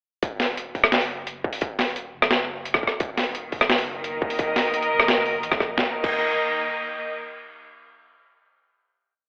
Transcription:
0.23 0.76 D#1 loud
0.23 kick loud
0.23 closed hi-hat medium
0.40 snare medium
0.40 open hi-hat medium
0.57 closed hi-hat medium
0.75 1.43 F#1 loud
0.75 kick medium
0.75 open hi-hat soft
0.84 cross-stick medium
0.92 snare loud
0.92 closed hi-hat medium
1.01 open hi-hat medium
1.27 closed hi-hat medium
1.44 kick loud
1.53 open hi-hat medium
1.61 kick loud
1.61 closed hi-hat medium
1.79 2.15 D#1 loud
1.79 snare medium
1.79 open hi-hat medium
1.96 closed hi-hat medium
2.13 2.82 F#1 loud
2.22 cross-stick medium
2.31 snare loud
2.31 closed hi-hat medium
2.65 closed hi-hat medium
2.74 kick loud
2.74 cross-stick medium
2.83 kick medium
2.87 cross-stick soft
3.00 3.54 D#1 loud
3.00 5.76 D#3 medium
3.00 kick loud
3.00 closed hi-hat medium
3.18 snare medium
3.18 open hi-hat medium
3.35 closed hi-hat medium
3.43 5.78 A#3 medium
3.52 4.21 F#1 loud
3.52 kick medium
3.52 open hi-hat soft
3.61 cross-stick medium
3.70 snare loud
3.70 closed hi-hat medium
3.78 open hi-hat medium
3.98 5.78 A#4 loud
3.98 5.78 D#5 medium
4.04 closed hi-hat medium
4.22 kick loud
4.30 open hi-hat medium
4.39 kick loud
4.39 closed hi-hat medium
4.56 4.92 D#1 loud
4.56 snare medium
4.56 open hi-hat medium
4.74 closed hi-hat medium
4.83 closed hi-hat soft
4.91 5.44 F#1 loud
5.00 cross-stick medium
5.08 snare loud
5.08 closed hi-hat medium
5.26 open hi-hat soft
5.43 5.77 A#1 medium
5.43 closed hi-hat medium
5.52 kick loud
5.52 cross-stick medium
5.60 kick medium
5.60 cross-stick soft
5.77 5.87 D#1 loud
5.77 7.12 D#3 medium
5.77 kick loud
5.77 snare medium
5.82 7.12 A#3 medium
5.88 7.13 A#4 medium
5.93 7.12 D#5 medium
6.04 6.20 D#1 loud
6.04 kick loud
6.04 crash medium

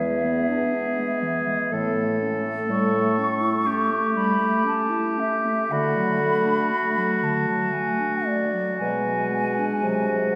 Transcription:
0.00 0.58 E2 medium
0.00 0.26 G#3 soft
0.00 1.74 B3 medium
0.00 1.74 G#4 medium
0.00 2.22 E5 medium
0.24 0.50 B3 soft
0.49 0.76 D4 soft
0.75 1.00 B3 soft
0.98 1.24 G#3 soft
1.23 1.49 E3 soft
1.47 1.72 G#3 soft
1.72 2.55 A2 soft
1.72 1.96 E3 soft
1.72 5.73 A3 medium
1.72 3.68 A4 medium
1.95 2.23 A3 soft
2.21 2.47 C#4 soft
2.46 2.68 A3 soft
2.69 3.51 A2 medium
2.69 2.95 G3 medium
2.69 4.19 C#6 medium
2.94 3.20 A3 soft
3.18 3.43 C#4 soft
3.41 3.68 E4 soft
3.66 3.92 C#4 soft
3.66 5.71 G4 medium
3.91 4.17 A3 soft
4.15 4.40 G3 soft
4.15 4.67 B5 medium
4.38 4.66 A3 soft
4.64 4.91 C#4 soft
4.64 5.21 A5 medium
4.90 5.19 E4 soft
5.18 5.47 C#4 soft
5.18 5.73 E5 medium
5.45 5.70 A3 soft
5.71 5.98 D3 soft
5.71 6.56 D3 medium
5.71 8.47 A3 medium
5.71 10.35 F#4 medium
5.71 7.25 B5 medium
5.96 6.22 F#3 soft
6.20 6.47 A3 soft
6.46 6.72 D4 soft
6.71 6.99 A3 soft
6.98 7.24 F#3 soft
7.23 7.49 D3 soft
7.23 7.75 A5 medium
7.47 7.74 F#3 soft
7.72 8.01 A3 soft
7.72 8.28 G#5 medium
8.00 8.28 D4 soft
8.26 8.55 A3 soft
8.26 8.78 D5 medium
8.53 8.79 F#3 soft
8.78 9.66 B2 medium
8.78 9.07 F#3 soft
8.78 10.35 G#3 soft
8.78 10.09 G#5 medium
9.05 9.32 G#3 soft
9.31 9.60 B3 soft
9.59 9.82 D4 soft
9.83 10.35 C3 soft
9.83 10.11 F#3 soft
10.09 10.35 G#3 soft

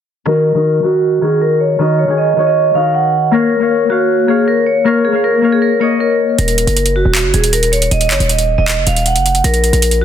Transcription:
0.25 0.53 D#3 loud
0.25 0.45 D#4 medium
0.25 0.46 F#4 medium
0.25 0.81 A#4 medium
0.25 0.46 A#4 loud
0.54 0.81 D#3 medium
0.54 0.74 D#4 medium
0.54 0.75 F#4 medium
0.54 0.75 A#4 medium
0.83 1.20 D#3 medium
0.83 1.09 D#4 medium
0.83 1.20 F#4 medium
0.83 1.09 F#4 medium
0.83 1.10 A#4 medium
1.21 1.77 D#3 medium
1.21 1.60 D#4 medium
1.21 1.60 F#4 medium
1.21 1.39 G#4 medium
1.21 1.61 A#4 medium
1.42 1.58 A#4 medium
1.60 1.77 C#5 medium
1.79 2.06 D#3 loud
1.79 1.98 D#4 medium
1.79 1.99 F#4 medium
1.79 1.99 A#4 loud
1.79 1.97 D#5 medium
1.99 2.16 C#5 medium
2.07 2.35 D#3 medium
2.07 2.27 D#4 medium
2.07 2.27 F#4 medium
2.07 2.28 G#4 medium
2.18 2.45 D#5 medium
2.36 2.73 D#3 medium
2.36 2.62 D#4 medium
2.36 2.62 F#4 medium
2.36 2.63 C#5 medium
2.47 2.74 D#5 medium
2.74 3.38 D#3 medium
2.74 3.12 D#4 medium
2.74 3.13 F#4 medium
2.74 3.13 A#4 medium
2.74 2.92 F5 medium
2.95 3.30 F#5 medium
3.31 3.51 A#3 loud
3.31 3.51 A#4 medium
3.31 3.87 A#4 loud
3.31 3.52 C#5 medium
3.31 3.52 F5 loud
3.60 3.79 A#3 medium
3.60 3.80 A#4 medium
3.60 3.80 C#5 medium
3.60 3.81 F5 medium
3.89 4.14 A#3 medium
3.89 4.26 F#4 medium
3.89 4.15 A#4 medium
3.89 4.15 C#5 medium
3.89 4.16 F5 medium
4.27 4.65 A#3 medium
4.27 4.45 G#4 medium
4.27 4.65 A#4 medium
4.27 4.66 C#5 medium
4.27 4.66 F5 medium
4.48 4.64 A#4 medium
4.66 4.83 C#5 medium
4.84 5.04 A#3 loud
4.84 5.04 A#4 medium
4.84 5.02 A#4 medium
4.84 5.05 C#5 medium
4.84 5.05 F5 loud
5.05 5.21 G#4 medium
5.12 5.32 A#3 medium
5.12 5.32 A#4 medium
5.12 5.33 C#5 medium
5.12 5.33 F5 medium
5.24 5.51 A#4 medium
5.41 5.67 A#3 medium
5.41 5.67 A#4 medium
5.41 5.68 C#5 medium
5.41 5.68 F5 medium
5.52 5.61 G#4 medium
5.62 5.79 A#4 medium
5.80 6.17 A#3 medium
5.80 6.18 A#4 medium
5.80 5.98 C#5 medium
5.80 6.18 C#5 medium
5.80 6.19 D#5 medium
6.00 6.17 A#4 medium
6.38 6.66 D#1 loud
6.38 6.92 A#4 medium
6.38 closed hi-hat medium
6.48 closed hi-hat medium
6.58 closed hi-hat medium
6.67 7.04 F#1 loud
6.67 closed hi-hat medium
6.77 closed hi-hat medium
6.86 closed hi-hat medium
6.96 7.32 F#4 medium
7.05 7.26 D#1 loud
7.15 clap loud
7.15 closed hi-hat medium
7.24 7.33 F#1 loud
7.34 7.89 D#1 loud
7.34 7.51 G#4 medium
7.34 closed hi-hat medium
7.44 closed hi-hat medium
7.53 7.70 A#4 medium
7.53 closed hi-hat medium
7.63 closed hi-hat medium
7.72 7.89 C#5 medium
7.72 closed hi-hat medium
7.82 closed hi-hat medium
7.91 8.12 D#1 loud
7.91 8.08 D#5 medium
7.91 closed hi-hat medium
8.01 closed hi-hat medium
8.10 8.19 F#1 medium
8.10 8.27 C#5 medium
8.10 clap medium
8.10 closed hi-hat medium
8.20 8.57 D#1 loud
8.20 closed hi-hat medium
8.29 8.56 D#5 medium
8.29 closed hi-hat medium
8.38 closed hi-hat medium
8.58 8.79 D#1 loud
8.58 8.85 D#5 medium
8.68 clap loud
8.68 closed hi-hat medium
8.77 8.86 F1 loud
8.87 9.17 D#1 loud
8.87 9.03 F5 medium
8.87 closed hi-hat medium
8.96 closed hi-hat medium
9.06 9.42 F#5 medium
9.06 closed hi-hat medium
9.16 9.43 F1 loud
9.16 closed hi-hat medium
9.26 closed hi-hat medium
9.35 closed hi-hat medium
9.44 9.72 A#1 loud
9.44 9.98 A#4 loud
9.44 closed hi-hat medium
9.54 closed hi-hat medium
9.64 closed hi-hat medium
9.73 10.05 A#1 loud
9.73 closed hi-hat medium
9.82 closed hi-hat medium
9.91 closed hi-hat medium
10.01 10.05 F#4 medium

